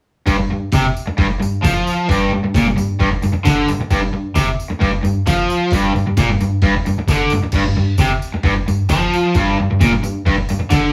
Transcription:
0.26 G2, kick, open hi-hat, tambourine
0.39 G2
0.51 G2
0.72 C3, kick, snare, open hi-hat, tambourine
0.84 muted overdriven electric guitar stroke
0.97 tambourine
1.07 muted overdriven electric guitar stroke
1.18 G2, kick, open hi-hat, tambourine
1.29 muted overdriven electric guitar stroke
1.40 G2, tambourine
1.63 F3, kick, snare, open hi-hat, tambourine
1.87 tambourine
2.09 G2, kick, open hi-hat, tambourine
2.34 G2
2.44 G2
2.54 A#2, kick, snare, open hi-hat, tambourine
2.66 G2
2.77 G2, tambourine
3.00 G2, kick, open hi-hat, tambourine
3.12 muted overdriven electric guitar stroke
3.22 G2, tambourine
3.33 muted overdriven electric guitar stroke
3.44 D3, kick, snare, open hi-hat, tambourine
3.68 G2, tambourine
3.81 muted overdriven electric guitar stroke
3.90 G2, kick, open hi-hat, tambourine
4.03 G2
4.13 G2
4.35 C3, kick, snare, open hi-hat, tambourine
4.47 muted overdriven electric guitar stroke
4.60 tambourine
4.70 muted overdriven electric guitar stroke
4.81 G2, kick, open hi-hat, tambourine
4.93 muted overdriven electric guitar stroke
5.04 G2, tambourine
5.26 F3, kick, snare, open hi-hat, tambourine
5.50 tambourine
5.71 G2, kick, open hi-hat, tambourine
5.95 G2, tambourine
6.07 G2
6.17 A#2, kick, snare, open hi-hat, tambourine
6.30 G2
6.41 G2, tambourine
6.62 G2, kick, open hi-hat, tambourine
6.76 muted overdriven electric guitar stroke
6.86 G2, tambourine
6.99 muted overdriven electric guitar stroke
7.08 D3, kick, snare, open hi-hat, tambourine
7.30 G2, tambourine
7.43 muted overdriven electric guitar stroke
7.52 G2, kick, tambourine, crash
7.66 G2
7.77 G2
7.98 C3, kick, snare, open hi-hat, tambourine
8.10 muted overdriven electric guitar stroke
8.22 tambourine
8.34 muted overdriven electric guitar stroke
8.43 G2, kick, open hi-hat, tambourine
8.56 muted overdriven electric guitar stroke
8.68 G2, tambourine
8.89 F3, kick, snare, open hi-hat, tambourine
9.13 tambourine
9.34 G2, kick, open hi-hat, tambourine
9.60 G2
9.71 G2
9.80 A#2, kick, snare, open hi-hat, tambourine
9.93 G2
10.03 G2, tambourine
10.26 G2, kick, open hi-hat, tambourine
10.38 muted overdriven electric guitar stroke
10.49 G2, tambourine
10.60 muted overdriven electric guitar stroke
10.70 D3, kick, snare, open hi-hat, tambourine

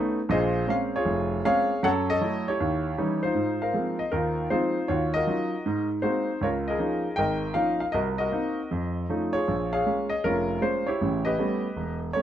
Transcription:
Already playing: A3 B3 C#4 D#4
0.29 A#1 A#2 G#4 C5 D#5
0.67 G#3 A#3 C4 C#4 F5
0.96 F4 G#4 C#5
1.05 F1
1.45 G#3 A#3 C4 C#4 G#4 C#5 F5
1.83 F#2 F#3 A4 C#5 F#5
2.10 A4 D#5
2.21 F#3 A3 E4
2.48 E4 G4 C#5
2.60 D#2
2.98 E3 G3 C#4 D#4
3.23 D#4 F4 C5
3.35 G#2
3.62 A#4 C5 F5
3.73 F3 G#3 A#3 C4
3.99 D#5
4.12 D#2 D#4 F4 A#4
4.50 F3 G#3 A#3 C4 D#4 F4 C5
4.88 D#2 F4 F#4 C#5
5.14 F#4 A#4 D#5
5.27 F#3 C#4 D#4 F4
5.66 G#2
6.02 G#3 A#3 C4 D#4 F#4 C5
6.41 C#2 F4 A#4 C#5
6.68 G#4 A#4 D#5
6.79 F3 A#3 C#4 D#4
7.16 G#1 A#4 D#5 G5
7.54 F3 A#3 C#4 D#4 F5
7.80 F5
7.92 C2 F#4 A#4 D#5
8.18 F#4 A#4 D#5
8.32 A#3 C4 D#4
8.71 F2
9.09 F3 A3 C#4 D#4
9.33 F4 G#4 C#5
9.48 A#1
9.73 G#4 C#5 F5
9.86 G#3 A#3 C#4
10.10 D#5
10.24 F1 C#4 F4 A#4
10.61 G#3 A#3 C#4 C5
10.87 E4 G4 C#5
11.01 A1 C#3
11.25 G4 B4 D#5
11.38 G3 A3 B3 C#4
11.76 E1
12.13 G3 A3 B3 C#4 C#5

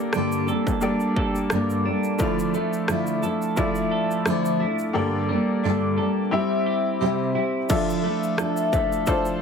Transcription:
Already playing: G3 A#3 D4 G4 A4 D5
0.13 G2 D3 G3 A#3 D4 A4, cross-stick, shaker
0.32 shaker
0.47 G3 A#3 D4 A4, shaker
0.67 kick, shaker
0.81 G3 A#3 D4 G4 A4 D5, shaker
1.00 shaker
1.16 A4, kick
1.35 shaker
1.50 G2 D3 G3 A#3 D4 A4, cross-stick, shaker
1.70 shaker
1.85 G3 A#3 D4 A4
2.04 shaker
2.18 D3 F3 A3 D4 E4 F4 A4 D5, kick, shaker
2.39 shaker
2.53 A3 D4 E4 A4, shaker
2.73 shaker
2.88 D3 F3 D4 E4 A4, cross-stick, shaker
3.07 shaker
3.22 D4 E4 A4, shaker
3.42 shaker
3.56 F3 A3 D4 E4 F4 D5, kick, shaker
3.60 A4
3.75 shaker
3.92 A4
4.11 shaker
4.25 D3 F3 A3 D4 E4 A4, cross-stick, shaker
4.45 shaker
4.59 D4 E4 A4
4.79 shaker
4.93 G2 D3 G3 A#3 D4 G4 A4 D5
5.29 G3 A#3 D4 A4
5.64 G2 D3 G3 A#3 D4 A4
5.97 G3 A#3 D4 A4
6.31 G3 C4 E4 G4 E5
6.67 G4
7.00 C3 G3 C4 E4 G4
7.34 C4 E4 G4
7.69 D3 F3 D4 E4 F4 A4 E5, kick, crash, shaker
7.90 shaker
8.03 A3 D4 E4 A4
8.23 shaker
8.37 F3 D4 E4 A4, cross-stick, shaker
8.57 shaker
8.73 A3, kick, shaker
8.92 shaker
9.06 D4 F4 A4 C5, kick, shaker
9.25 shaker

